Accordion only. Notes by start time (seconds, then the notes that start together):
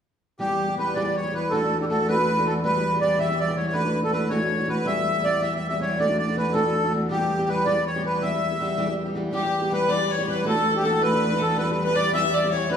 0.40 G4
0.78 B4
0.95 D5
1.16 C#5
1.34 B4
1.50 A4
1.81 G4
1.89 A4
2.09 B4
2.47 A4
2.64 B4
3.01 D5
3.19 E5
3.40 D5
3.57 C#5
3.67 C#5
3.73 B4
4.04 A4
4.11 B4
4.30 C#5
4.69 B4
4.86 E5
5.24 D5
5.42 E5
5.56 E5
5.68 E5
5.81 C#5
5.99 D5
6.18 D5
6.37 B4
6.53 A4
7.11 G4
7.49 B4
7.66 D5
7.87 C#5
8.05 B4
8.22 E5
9.34 G4
9.73 B4
9.91 D5
10.11 C#5
10.30 B4
10.48 A4
10.76 G4
10.85 A4
11.03 B4
11.42 A4
11.59 B4
11.72 B4
11.85 B4
11.95 D5
12.14 E5
12.33 D5
12.53 C#5
12.71 B4